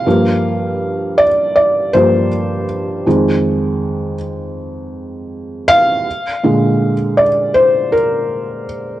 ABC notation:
X:1
M:4/4
L:1/8
Q:1/4=80
K:Fdor
V:1 name="Felt piano"
f3 d d c2 z | z6 z f- | f3 d c B2 z |]
V:2 name="Felt piano" clef=bass
[G,,F,B,]4- [G,,F,B,] [G,,F,B,] z2 | [F,,E,A,]3 z4 z | z [B,,D,A,] z6 |]